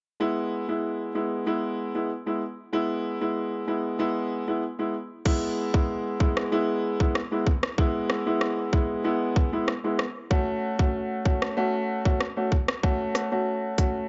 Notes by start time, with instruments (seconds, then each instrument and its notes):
0.20 grand piano G#3 B3 E4
0.68 grand piano G#3 B3 E4
1.15 grand piano G#3 B3 E4
1.46 grand piano G#3 B3 E4
1.95 grand piano G#3 B3 E4
2.26 grand piano G#3 B3 E4
2.73 grand piano G#3 B3 E4
3.21 grand piano G#3 B3 E4
3.67 grand piano G#3 B3 E4
3.99 grand piano G#3 B3 E4
4.47 grand piano G#3 B3 E4
4.79 grand piano G#3 B3 E4
5.25 grand piano G#3 B3 E4, kick, crash
5.74 grand piano G#3 B3 E4, kick
6.20 grand piano G#3 B3 E4, kick
6.37 cross-stick
6.52 grand piano G#3 B3 E4
7.00 grand piano G#3 B3 E4, kick
7.15 cross-stick
7.31 grand piano G#3 B3 E4
7.47 kick
7.63 cross-stick
7.78 grand piano G#3 B3 E4, kick
8.10 cross-stick
8.26 grand piano G#3 B3 E4
8.41 cross-stick
8.73 grand piano G#3 B3 E4, kick
9.04 grand piano G#3 B3 E4
9.36 kick
9.53 grand piano G#3 B3 E4
9.68 cross-stick
9.84 grand piano G#3 B3 E4
9.99 cross-stick
10.30 grand piano A3 C#4 F#4, kick
10.79 grand piano A3 C#4 F#4, kick
11.25 grand piano A3 C#4 F#4, kick
11.42 cross-stick
11.57 grand piano A3 C#4 F#4
12.05 grand piano A3 C#4 F#4, kick
12.21 cross-stick
12.37 grand piano A3 C#4 F#4
12.52 kick
12.68 cross-stick
12.83 grand piano A3 C#4 F#4, kick
13.15 cross-stick, closed hi-hat
13.32 grand piano A3 C#4 F#4
13.78 grand piano A3 C#4 F#4, kick, closed hi-hat